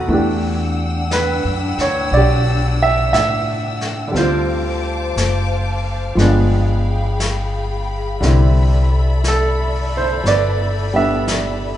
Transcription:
0.00 0.10 F#3 soft
0.00 0.10 A3 soft
0.00 0.12 D#4 medium
0.00 0.20 F#4 soft
0.00 0.11 A4 soft
0.00 0.11 B4 soft
0.00 0.11 C5 soft
0.06 1.40 E2 medium
0.06 4.13 E3 soft
0.06 4.14 A3 soft
0.06 4.09 D4 medium
0.06 4.09 F#5 medium
0.06 4.08 G5 medium
0.06 4.08 E6 medium
0.06 brush sweep soft
0.12 4.15 D4 soft
0.12 2.16 G4 soft
1.11 1.77 B4 medium
1.11 brush sweep soft
1.11 snare soft
1.11 hi-hat pedal medium
1.45 1.76 F#2 medium
1.78 2.09 D2 medium
1.78 2.14 C#5 medium
1.78 snare soft
2.11 3.09 B1 medium
2.11 2.77 D5 medium
2.11 brush sweep soft
2.17 4.13 G4 medium
2.83 3.12 E5 medium
3.12 4.10 A2 medium
3.12 4.17 E5 medium
3.12 brush sweep soft
3.12 snare soft
3.12 hi-hat pedal medium
3.81 snare soft
4.08 6.14 D3 soft
4.08 6.16 G3 soft
4.14 5.11 D2 medium
4.14 6.17 C4 soft
4.14 6.14 C5 medium
4.14 6.16 C5 medium
4.14 8.18 F5 medium
4.14 6.16 A5 medium
4.14 6.16 D6 medium
4.14 brush sweep soft
4.14 snare soft
4.18 6.19 F4 medium
5.16 6.13 F#1 medium
5.16 brush sweep soft
5.16 snare soft
5.16 hi-hat pedal soft
6.15 8.16 G1 medium
6.15 8.20 F3 medium
6.15 8.21 G#3 soft
6.15 8.22 B3 soft
6.15 8.19 G#4 medium
6.15 8.19 G5 medium
6.15 11.77 B5 medium
6.15 brush sweep soft
6.15 snare soft
6.20 8.22 D4 medium
7.20 brush sweep soft
7.20 snare soft
7.20 hi-hat pedal soft
8.19 10.20 C2 medium
8.19 11.77 D3 soft
8.19 10.92 G3 soft
8.19 11.77 A4 medium
8.19 11.77 D5 medium
8.19 11.77 E5 medium
8.19 brush sweep soft
8.19 snare soft
8.24 11.77 C4 soft
8.24 11.77 E4 soft
9.24 brush sweep soft
9.24 snare soft
9.24 hi-hat pedal soft
9.28 9.96 A4 medium
9.97 10.28 C5 medium
10.24 11.77 G1 medium
10.24 brush sweep soft
10.24 snare soft
10.28 11.77 B4 soft
10.28 10.91 D5 medium
10.93 11.77 G3 soft
10.93 11.77 B3 soft
10.93 11.77 D4 soft
10.93 11.77 E5 medium
11.28 brush sweep soft
11.28 snare soft
11.28 hi-hat pedal medium

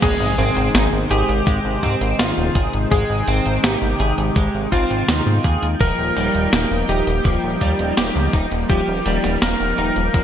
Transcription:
0.02 0.15 G#1 loud
0.02 5.77 C3 medium
0.02 5.77 D#3 medium
0.02 0.34 G#3 loud
0.02 5.77 G#3 medium
0.02 10.24 D#4 medium
0.02 0.96 G#4 loud
0.02 2.89 C5 medium
0.02 kick loud
0.02 closed hi-hat medium
0.02 crash loud
0.02 impact medium
0.20 0.33 G#1 medium
0.38 0.51 G#1 medium
0.38 0.70 C4 loud
0.38 closed hi-hat medium
0.57 0.70 G#1 medium
0.57 closed hi-hat medium
0.74 0.88 G#1 loud
0.74 0.87 D#4 medium
0.74 snare loud
0.74 closed hi-hat medium
0.93 1.06 G#1 medium
1.11 1.24 G#1 medium
1.11 2.05 G4 medium
1.11 1.32 G#4 medium
1.11 closed hi-hat medium
1.29 1.42 G#1 medium
1.29 closed hi-hat medium
1.47 1.60 G#1 loud
1.47 1.79 G#3 loud
1.47 kick loud
1.47 closed hi-hat medium
1.65 1.78 G#1 medium
1.83 1.96 G#2 loud
1.83 2.15 C4 loud
1.83 kick medium
1.83 closed hi-hat medium
2.01 2.14 G#1 medium
2.01 closed hi-hat medium
2.19 2.32 G#1 medium
2.19 2.32 D#4 medium
2.19 2.57 F4 medium
2.19 snare loud
2.19 closed hi-hat medium
2.38 2.50 D#1 medium
2.55 2.68 G#1 medium
2.55 2.77 G#4 medium
2.55 kick loud
2.55 open hi-hat medium
2.73 2.86 G#1 medium
2.73 closed hi-hat medium
2.91 3.05 G#1 loud
2.91 3.23 G#3 loud
2.91 3.29 G#4 medium
2.91 10.24 G5 medium
2.91 kick loud
2.91 closed hi-hat medium
3.10 3.23 G#1 medium
3.28 3.41 G#1 medium
3.28 3.59 C4 loud
3.28 closed hi-hat medium
3.46 3.59 G#1 medium
3.46 closed hi-hat medium
3.63 3.77 G#1 loud
3.63 3.77 D#4 medium
3.63 4.58 G4 medium
3.63 snare loud
3.63 closed hi-hat medium
3.82 3.95 G#1 medium
4.00 4.13 G#1 medium
4.00 4.21 G#4 medium
4.00 closed hi-hat medium
4.18 4.31 G#1 medium
4.18 closed hi-hat medium
4.36 4.49 G#1 loud
4.36 4.68 G#3 loud
4.36 kick loud
4.36 closed hi-hat medium
4.54 4.67 G#1 medium
4.72 4.85 G#1 loud
4.72 5.04 C4 loud
4.72 5.66 F4 medium
4.72 kick medium
4.72 closed hi-hat medium
4.91 5.03 G#1 medium
4.91 closed hi-hat medium
5.08 5.21 D#2 medium
5.08 5.21 D#4 medium
5.08 snare loud
5.08 closed hi-hat medium
5.27 5.39 G#2 medium
5.44 5.57 D#2 medium
5.44 5.66 G#4 medium
5.44 kick loud
5.44 open hi-hat medium
5.62 5.76 D#2 medium
5.62 closed hi-hat medium
5.80 5.94 D#1 loud
5.80 10.24 F3 medium
5.80 6.13 F3 loud
5.80 10.24 G3 medium
5.80 10.24 A#3 medium
5.80 6.75 A#4 loud
5.80 kick loud
5.80 closed hi-hat medium
5.98 6.12 D#1 medium
6.17 6.30 D#1 medium
6.17 6.49 G3 loud
6.17 closed hi-hat medium
6.35 6.48 D#1 medium
6.35 closed hi-hat medium
6.53 6.66 D#1 loud
6.53 6.66 A#3 medium
6.53 snare loud
6.53 closed hi-hat medium
6.71 6.84 D#1 medium
6.89 7.02 D#1 medium
6.89 7.10 D#4 medium
6.89 7.83 G4 loud
6.89 closed hi-hat medium
7.07 7.20 D#1 medium
7.07 closed hi-hat medium
7.25 7.38 D#1 loud
7.25 7.57 F3 loud
7.25 kick loud
7.25 closed hi-hat medium
7.43 7.56 D#1 medium
7.61 7.74 D#2 loud
7.61 7.93 G3 loud
7.61 kick medium
7.61 closed hi-hat medium
7.79 7.92 D#1 medium
7.79 closed hi-hat medium
7.97 8.11 D#1 loud
7.97 8.10 A#3 medium
7.97 8.35 G4 medium
7.97 snare loud
7.97 closed hi-hat medium
8.16 8.29 C#2 medium
8.33 8.47 D#1 medium
8.33 8.55 D#4 medium
8.33 kick loud
8.33 open hi-hat medium
8.52 8.65 D#1 medium
8.52 closed hi-hat soft
8.70 8.83 D#1 loud
8.70 9.02 F3 loud
8.70 9.07 G4 medium
8.70 kick loud
8.70 closed hi-hat medium
8.88 9.01 D#1 medium
9.06 9.19 D#1 medium
9.06 9.38 G3 loud
9.06 closed hi-hat medium
9.24 9.37 D#1 medium
9.24 snare soft
9.24 closed hi-hat medium
9.42 9.55 D#1 loud
9.42 9.55 A#3 medium
9.42 10.24 A#4 loud
9.42 snare loud
9.42 closed hi-hat medium
9.60 9.73 D#1 medium
9.78 9.91 D#1 loud
9.78 9.99 D#4 medium
9.78 closed hi-hat medium
9.96 10.09 D#1 medium
9.96 closed hi-hat medium
10.14 10.24 D#1 loud
10.14 10.24 F3 loud
10.14 kick loud
10.14 closed hi-hat medium

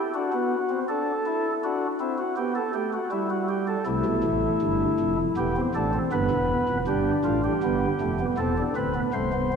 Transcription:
0.00 0.12 G4 medium
0.14 0.30 D4 medium
0.14 0.78 F#4 medium
0.33 0.56 B3 medium
0.70 0.85 C4 medium
0.89 1.12 D4 medium
0.89 1.52 A4 medium
1.26 1.49 E4 medium
1.64 1.86 D4 medium
1.64 1.86 F#4 medium
2.00 2.23 C4 medium
2.00 2.16 E4 medium
2.18 2.34 F#4 medium
2.37 2.60 B3 medium
2.37 2.53 G4 medium
2.55 2.71 A4 medium
2.74 2.97 A3 medium
2.74 2.90 G4 medium
2.93 3.09 F#4 medium
3.11 3.76 G3 medium
3.11 3.28 E4 medium
3.30 3.46 F#4 medium
3.49 3.65 G4 medium
3.68 3.84 A4 medium
3.86 4.03 C2 medium
3.86 4.03 C3 medium
3.86 5.16 A3 medium
3.86 5.16 E4 medium
4.05 4.22 B1 medium
4.05 4.22 B2 medium
4.24 4.48 A1 medium
4.24 4.48 A2 medium
4.62 4.85 G1 loud
4.62 4.85 G2 medium
4.99 5.23 F1 medium
4.99 5.23 F2 loud
5.37 5.61 E1 medium
5.37 5.61 E2 medium
5.37 5.54 B3 medium
5.37 5.61 G4 medium
5.56 5.73 C4 medium
5.75 5.98 A1 medium
5.75 5.98 A2 medium
5.75 5.91 D4 medium
5.75 5.98 A4 medium
5.94 6.10 C4 medium
6.12 6.29 G1 medium
6.12 6.29 G2 medium
6.12 6.77 B3 medium
6.12 6.77 B4 medium
6.31 6.54 E1 medium
6.31 6.54 E2 medium
6.69 6.85 F1 medium
6.69 6.85 F2 medium
6.87 7.11 G1 medium
6.87 7.11 G2 medium
6.87 7.52 D4 medium
6.87 7.11 G4 medium
7.25 7.48 A1 medium
7.25 7.48 A2 medium
7.25 7.41 F4 medium
7.44 8.25 G4 medium
7.63 7.86 G1 medium
7.63 7.86 G2 loud
7.63 7.87 B3 medium
8.01 8.24 F1 medium
8.01 8.24 F2 medium
8.01 8.17 A3 medium
8.20 8.36 B3 medium
8.38 8.62 E1 medium
8.38 8.62 E2 medium
8.38 8.55 C4 medium
8.38 8.62 A4 medium
8.57 8.74 D4 medium
8.76 9.00 D1 medium
8.76 9.00 D2 medium
8.76 8.93 C4 medium
8.76 9.00 B4 medium
8.95 9.11 B3 medium
9.13 9.56 C1 medium
9.13 9.56 C2 medium
9.13 9.30 A3 medium
9.13 9.56 C5 medium
9.33 9.50 B3 medium
9.53 9.56 C4 medium

